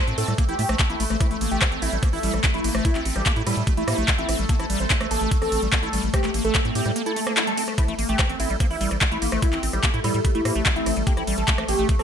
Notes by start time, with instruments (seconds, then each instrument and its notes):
Already playing: wobble bass A3, synth drone A3
0.07 analog synth bass A2, acid bass C4, closed hi-hat
0.18 analog synth bass A2, acid bass C4, analog synth lead A4, open hi-hat, ride
0.28 analog synth bass A2, acid bass G3, cross-stick, closed hi-hat
0.38 acid bass A#3, kick, closed hi-hat
0.49 analog synth bass A1, acid bass E4, analog synth lead G4, closed hi-hat
0.59 analog synth bass A2, acid bass A3, open hi-hat, ride
0.69 analog synth bass A#1, acid bass A3, cross-stick, closed hi-hat
0.79 acid bass A#3, kick, clap, closed hi-hat
0.90 analog synth bass A1, acid bass A#3, analog synth lead E4, closed hi-hat
1.00 analog synth bass A1, acid bass A3, open hi-hat, ride
1.10 analog synth bass A1, acid bass A3, cross-stick, closed hi-hat
1.21 acid bass A3, analog synth lead E4, kick, cross-stick, closed hi-hat
1.31 analog synth bass A1, acid bass A3, closed hi-hat
1.41 analog synth bass A1, acid bass A#3, open hi-hat, ride
1.51 analog synth bass A1, acid bass A3, analog synth lead G4, closed hi-hat
1.62 kick, cross-stick, clap, closed hi-hat
1.72 analog synth bass A1, acid bass C4, closed hi-hat
1.82 analog synth bass A1, wobble bass C4, acid bass C4, analog synth lead E4, open hi-hat, ride
1.92 analog synth bass A1, acid bass G3, wobble bass C4, closed hi-hat
2.03 acid bass A#3, kick, cross-stick, closed hi-hat
2.13 analog synth bass A1, acid bass E4, analog synth lead E4, open hi-hat
2.23 analog synth bass A1, acid bass G3, open hi-hat, ride
2.34 analog synth bass A1, acid bass G3, cross-stick, closed hi-hat
2.44 acid bass A3, kick, clap, closed hi-hat
2.54 analog synth bass A1, acid bass A3, analog synth lead E4, closed hi-hat
2.64 analog synth bass A1, acid bass A#3, open hi-hat, ride
2.75 analog synth bass A1, acid bass A3, cross-stick, closed hi-hat
2.85 acid bass A3, analog synth lead E4, kick, closed hi-hat
2.95 analog synth bass A1, acid bass C4, clap, closed hi-hat
3.05 analog synth bass A1, acid bass C4, wobble bass E4, open hi-hat, ride
3.16 analog synth bass A1, acid bass G3, analog synth lead G4, cross-stick, closed hi-hat
3.26 acid bass A#3, kick, clap, closed hi-hat
3.36 analog synth bass A2, acid bass E4, closed hi-hat
3.47 analog synth bass A2, acid bass G3, analog synth lead E4, wobble bass G4, cross-stick, open hi-hat, ride
3.57 analog synth bass A2, acid bass G3, closed hi-hat
3.67 acid bass A3, kick, closed hi-hat
3.77 analog synth bass A1, acid bass A3, analog synth lead E4, closed hi-hat
3.88 analog synth bass A2, acid bass A#3, cross-stick, open hi-hat, ride
3.98 analog synth bass A#1, acid bass A3, closed hi-hat
4.08 kick, clap, closed hi-hat
4.18 analog synth bass A1, acid bass C4, analog synth lead E4, closed hi-hat
4.29 analog synth bass A1, acid bass C4, cross-stick, open hi-hat, ride
4.39 analog synth bass A1, acid bass G3, closed hi-hat
4.49 acid bass A#3, analog synth lead A4, kick, closed hi-hat
4.60 analog synth bass A1, acid bass E4, cross-stick, closed hi-hat
4.70 analog synth bass A1, acid bass G3, open hi-hat, ride
4.80 analog synth bass A1, acid bass G3, analog synth lead C5, closed hi-hat
4.90 acid bass A3, kick, clap, closed hi-hat
5.01 analog synth bass A1, acid bass A3, cross-stick, closed hi-hat
5.11 analog synth bass A1, acid bass A#3, wobble bass C4, analog synth lead A4, open hi-hat, ride
5.21 analog synth bass A1, acid bass A3, wobble bass C4, closed hi-hat
5.31 acid bass A3, kick, closed hi-hat
5.42 analog synth bass A1, acid bass C4, analog synth lead A4, cross-stick, open hi-hat
5.52 analog synth bass A1, acid bass C4, open hi-hat, ride
5.62 analog synth bass A1, acid bass G3, closed hi-hat
5.73 acid bass A#3, kick, cross-stick, clap, closed hi-hat
5.83 analog synth bass A1, acid bass E4, analog synth lead A4, closed hi-hat
5.93 analog synth bass A1, acid bass G3, open hi-hat, ride
6.03 analog synth bass A1, acid bass G3, closed hi-hat
6.14 wobble bass A3, acid bass A3, analog synth lead G4, kick, cross-stick, closed hi-hat
6.24 analog synth bass A1, acid bass A3, clap, closed hi-hat
6.34 analog synth bass A1, acid bass A#3, open hi-hat, ride
6.44 analog synth bass A1, acid bass A3, analog synth lead A4, closed hi-hat
6.55 acid bass A3, kick, cross-stick, clap, closed hi-hat
6.65 analog synth bass A2, acid bass C4, closed hi-hat
6.75 analog synth bass A2, acid bass C4, analog synth lead G4, open hi-hat, ride
6.86 analog synth bass A2, acid bass G3, cross-stick, closed hi-hat
6.96 acid bass A#3, closed hi-hat, swell
7.06 acid bass E4, analog synth lead A4, closed hi-hat
7.16 acid bass A3, open hi-hat, ride
7.27 acid bass A#3, cross-stick, closed hi-hat
7.37 acid bass E4, clap, closed hi-hat
7.47 acid bass G3, analog synth lead A4, closed hi-hat
7.57 acid bass C4, open hi-hat, ride
7.68 acid bass A3, cross-stick, closed hi-hat
7.78 acid bass A3, synth drone A3, analog synth lead E4, kick, cross-stick, closed hi-hat
7.88 analog synth bass A1, acid bass A3, closed hi-hat
7.99 analog synth bass A1, acid bass A#3, open hi-hat, ride
8.09 analog synth bass A1, acid bass A3, analog synth lead G4, closed hi-hat
8.19 acid bass A3, kick, cross-stick, clap, closed hi-hat
8.29 analog synth bass A1, acid bass C4, closed hi-hat
8.40 analog synth bass A1, wobble bass C4, acid bass C4, analog synth lead E4, open hi-hat, ride
8.50 analog synth bass A1, acid bass G3, wobble bass C4, closed hi-hat
8.60 acid bass A#3, kick, cross-stick, closed hi-hat
8.71 analog synth bass A1, analog synth lead E4, acid bass E4, open hi-hat
8.81 analog synth bass A1, acid bass G3, open hi-hat, ride
8.91 analog synth bass A1, acid bass G3, cross-stick, closed hi-hat
9.01 acid bass A3, kick, clap, closed hi-hat
9.12 analog synth bass A1, acid bass A3, analog synth lead E4, closed hi-hat
9.22 analog synth bass A1, acid bass A#3, open hi-hat, ride
9.32 analog synth bass A1, acid bass A3, cross-stick, closed hi-hat
9.42 acid bass A3, analog synth lead E4, kick, closed hi-hat
9.53 analog synth bass A1, acid bass C4, clap, closed hi-hat
9.63 analog synth bass A1, acid bass C4, wobble bass E4, open hi-hat, ride
9.73 analog synth bass A1, acid bass G3, analog synth lead G4, cross-stick, closed hi-hat
9.84 acid bass A#3, kick, clap, closed hi-hat
9.94 analog synth bass A2, acid bass E4, closed hi-hat
10.04 analog synth bass A2, acid bass G3, analog synth lead E4, wobble bass G4, cross-stick, open hi-hat, ride
10.14 analog synth bass A2, acid bass G3, closed hi-hat
10.25 acid bass A3, kick, closed hi-hat
10.35 analog synth bass A1, acid bass A3, analog synth lead E4, closed hi-hat
10.45 analog synth bass A2, acid bass A#3, cross-stick, open hi-hat, ride
10.55 analog synth bass A#1, acid bass A3, closed hi-hat
10.66 acid bass A3, kick, clap, closed hi-hat
10.76 analog synth bass A1, acid bass C4, analog synth lead E4, closed hi-hat
10.86 analog synth bass A1, acid bass C4, cross-stick, open hi-hat, ride
10.97 analog synth bass A1, acid bass G3, closed hi-hat
11.07 acid bass A#3, analog synth lead G4, kick, closed hi-hat
11.17 analog synth bass A1, acid bass E4, cross-stick, closed hi-hat
11.27 analog synth bass A1, acid bass G3, open hi-hat, ride
11.38 analog synth bass A1, acid bass G3, analog synth lead A4, closed hi-hat
11.48 acid bass A3, kick, clap, closed hi-hat
11.58 analog synth bass A1, acid bass A3, cross-stick, closed hi-hat
11.68 analog synth bass A1, acid bass A#3, wobble bass C4, analog synth lead G4, open hi-hat, ride
11.79 analog synth bass A1, acid bass A3, wobble bass C4, closed hi-hat
11.89 acid bass A3, kick, closed hi-hat
11.99 analog synth bass A1, acid bass C4, analog synth lead A4, cross-stick, open hi-hat